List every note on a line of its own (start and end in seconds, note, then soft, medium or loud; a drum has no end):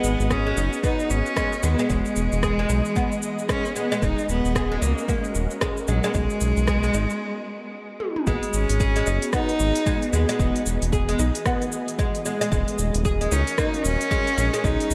0.00 0.16 G#1 medium
0.00 0.30 G#3 medium
0.00 0.32 B3 loud
0.00 3.98 B3 medium
0.00 1.88 F#4 medium
0.00 7.21 F#4 medium
0.00 3.98 G#4 medium
0.00 1.86 D#5 medium
0.00 cabasa medium
0.20 0.53 G#1 medium
0.20 cabasa soft
0.30 0.83 C#4 loud
0.30 0.46 G#4 medium
0.30 kick loud
0.30 cross-stick medium
0.30 cabasa soft
0.47 0.57 G#3 medium
0.57 0.69 F#1 medium
0.57 0.66 D#4 medium
0.57 cabasa medium
0.73 cabasa soft
0.83 0.99 B3 medium
0.83 1.12 D#4 loud
0.83 kick loud
0.83 cabasa soft
1.00 cabasa soft
1.10 1.22 G#1 medium
1.10 1.65 C#4 loud
1.10 cabasa medium
1.26 cabasa soft
1.37 1.52 G#3 medium
1.37 kick loud
1.37 cross-stick medium
1.37 cabasa soft
1.53 cabasa soft
1.63 1.75 D#2 medium
1.63 1.78 G#3 medium
1.63 1.92 B3 medium
1.63 cabasa medium
1.79 1.89 G#3 medium
1.79 cabasa soft
1.90 2.02 E1 loud
1.90 4.00 E3 medium
1.90 2.42 G#3 medium
1.90 3.49 G#3 loud
1.90 7.17 D#5 medium
1.90 kick medium
1.90 cabasa soft
2.05 cabasa soft
2.16 2.28 E1 medium
2.16 cabasa medium
2.32 2.65 E1 medium
2.32 cabasa soft
2.43 2.58 G#4 medium
2.43 kick loud
2.43 cross-stick medium
2.43 cabasa soft
2.59 2.69 G#3 medium
2.69 2.81 B1 medium
2.69 2.79 D#4 medium
2.69 cabasa medium
2.85 cabasa soft
2.96 3.11 B3 medium
2.96 kick loud
2.96 cabasa soft
3.12 cabasa soft
3.22 cabasa medium
3.39 cabasa soft
3.49 3.64 G#3 medium
3.49 3.74 C#4 loud
3.49 kick loud
3.49 cross-stick medium
3.49 cabasa soft
3.65 cabasa soft
3.76 3.91 G#3 medium
3.76 4.05 B3 medium
3.76 cabasa medium
3.92 4.01 G#3 medium
3.92 cabasa soft
4.02 4.14 D#1 loud
4.02 4.54 G#3 medium
4.02 6.13 C#4 medium
4.02 4.29 D#4 loud
4.02 6.13 F#4 medium
4.02 6.13 A#4 medium
4.02 kick loud
4.02 cabasa soft
4.18 cabasa soft
4.29 4.41 D#1 medium
4.29 4.79 B3 loud
4.29 cabasa medium
4.45 4.78 D#1 medium
4.45 cabasa soft
4.55 4.71 G#4 medium
4.55 kick medium
4.55 cross-stick medium
4.55 cabasa soft
4.72 4.82 G#3 medium
4.82 4.94 C#2 medium
4.82 5.10 A#3 medium
4.82 4.91 D#4 medium
4.82 cabasa medium
4.98 cabasa soft
5.08 5.62 G#3 medium
5.08 5.24 A#3 medium
5.08 kick loud
5.08 cabasa soft
5.24 cabasa soft
5.35 5.47 D#1 medium
5.35 cabasa medium
5.51 cabasa soft
5.61 5.77 G#3 loud
5.61 kick loud
5.61 cross-stick medium
5.61 cabasa soft
5.77 cabasa soft
5.88 6.00 A#1 medium
5.88 6.11 F#3 loud
5.88 6.03 G#3 medium
5.88 cabasa medium
6.04 6.13 G#3 loud
6.04 cabasa soft
6.10 6.17 B3 medium
6.14 6.27 B1 loud
6.14 6.67 G#3 medium
6.14 8.01 G#3 loud
6.14 7.20 B3 medium
6.14 7.20 F#4 medium
6.14 7.20 G#4 medium
6.14 kick loud
6.14 cabasa soft
6.30 cabasa soft
6.41 6.53 B1 medium
6.41 cabasa medium
6.57 6.90 B1 medium
6.57 cabasa soft
6.67 6.83 G#4 medium
6.67 kick loud
6.67 cross-stick medium
6.67 cabasa soft
6.83 6.94 G#3 medium
6.83 cabasa soft
6.94 7.06 G#1 medium
6.94 7.03 D#4 medium
6.94 cabasa medium
7.10 cabasa soft
8.00 high tom medium
8.16 mid tom medium
8.27 8.39 G#1 loud
8.27 8.79 G#3 medium
8.27 8.39 B3 medium
8.27 12.48 B3 medium
8.27 14.94 F#4 medium
8.27 10.37 F#4 medium
8.27 10.37 G#4 medium
8.27 14.94 D#5 medium
8.27 kick loud
8.27 cabasa soft
8.43 open hi-hat soft
8.43 cabasa soft
8.53 8.66 G#1 medium
8.53 9.29 C#4 loud
8.53 cabasa medium
8.69 9.02 G#1 medium
8.69 open hi-hat medium
8.69 cabasa soft
8.80 8.95 G#4 medium
8.80 kick loud
8.80 cabasa soft
8.96 9.06 G#3 medium
8.96 open hi-hat soft
8.96 cabasa soft
9.06 9.19 F#1 medium
9.06 9.16 D#4 medium
9.06 cabasa medium
9.22 open hi-hat medium
9.22 cabasa soft
9.33 9.48 B3 medium
9.33 10.09 D#4 loud
9.33 kick loud
9.33 cross-stick medium
9.33 cabasa soft
9.49 open hi-hat soft
9.49 cabasa soft
9.60 9.72 G#1 medium
9.60 cabasa medium
9.75 open hi-hat medium
9.75 cabasa soft
9.86 10.02 G#3 medium
9.86 kick loud
9.86 cabasa soft
10.02 open hi-hat soft
10.02 cabasa soft
10.13 10.25 D#2 medium
10.13 10.28 G#3 medium
10.13 10.89 B3 medium
10.13 cabasa medium
10.29 10.38 G#3 loud
10.29 open hi-hat medium
10.29 cabasa soft
10.39 10.51 E1 loud
10.39 12.50 E3 medium
10.39 10.92 G#3 medium
10.39 12.50 G#4 medium
10.39 kick loud
10.39 cabasa soft
10.56 open hi-hat soft
10.56 cabasa soft
10.66 10.78 E1 medium
10.66 cabasa medium
10.82 11.15 E1 medium
10.82 open hi-hat medium
10.82 cabasa soft
10.92 11.08 G#4 medium
10.92 kick loud
10.92 cabasa soft
11.09 11.19 G#3 medium
11.09 open hi-hat soft
11.09 cabasa soft
11.19 11.31 B1 medium
11.19 11.28 D#4 medium
11.19 cabasa medium
11.35 open hi-hat medium
11.35 cabasa soft
11.46 11.61 B3 medium
11.46 kick loud
11.46 cross-stick medium
11.46 cabasa soft
11.62 open hi-hat soft
11.62 cabasa soft
11.72 cabasa medium
11.88 open hi-hat medium
11.88 cabasa soft
11.99 12.14 G#3 medium
11.99 kick loud
11.99 cabasa soft
12.15 open hi-hat soft
12.15 cabasa soft
12.25 12.40 G#3 medium
12.25 cabasa medium
12.41 12.50 G#3 loud
12.41 open hi-hat medium
12.41 cabasa soft
12.52 12.64 D#1 loud
12.52 13.04 G#3 medium
12.52 14.62 C#4 medium
12.52 14.62 F#4 medium
12.52 14.62 A#4 medium
12.52 kick loud
12.52 cabasa soft
12.68 open hi-hat soft
12.68 cabasa soft
12.79 12.91 D#1 medium
12.79 cabasa medium
12.94 13.27 D#1 medium
12.94 open hi-hat medium
12.94 cabasa soft
13.05 13.20 G#4 medium
13.05 kick loud
13.05 cabasa soft
13.21 13.31 G#3 medium
13.21 open hi-hat soft
13.21 cabasa soft
13.32 13.44 C#2 medium
13.32 13.60 C#4 loud
13.32 13.41 D#4 medium
13.32 cabasa medium
13.47 open hi-hat medium
13.47 cabasa soft
13.58 13.73 A#3 medium
13.58 13.84 D#4 loud
13.58 kick loud
13.58 cross-stick medium
13.58 cabasa soft
13.74 open hi-hat soft
13.74 cabasa soft
13.85 13.97 D#1 medium
13.85 14.66 C#4 loud
13.85 cabasa medium
14.01 open hi-hat medium
14.01 cabasa soft
14.11 14.26 G#3 medium
14.11 kick loud
14.11 cabasa soft
14.27 open hi-hat soft
14.27 cabasa soft
14.38 14.50 A#1 medium
14.38 14.52 G#3 medium
14.38 cabasa medium
14.54 14.63 G#3 medium
14.54 open hi-hat soft
14.54 cabasa soft
14.64 14.76 B1 loud
14.64 14.94 G#3 medium
14.64 14.94 B3 medium
14.64 14.94 D#4 loud
14.64 14.94 F#4 medium
14.64 14.94 G#4 medium
14.64 kick loud
14.64 cabasa soft
14.80 open hi-hat soft
14.80 cabasa soft
14.91 14.94 B1 medium
14.91 cabasa medium